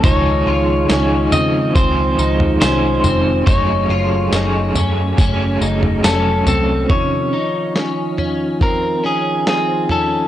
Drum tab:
TB |x---x-x-x-x-x-x-|x---x-x-x-x-x-x-|----------------|
SD |----o-------o---|----o-------o---|----o-------o---|
FT |o-----o-o--o--o-|o-----o-o--o--o-|o-----o-o-----o-|
BD |o-------o-------|o-------o-------|o-------o-------|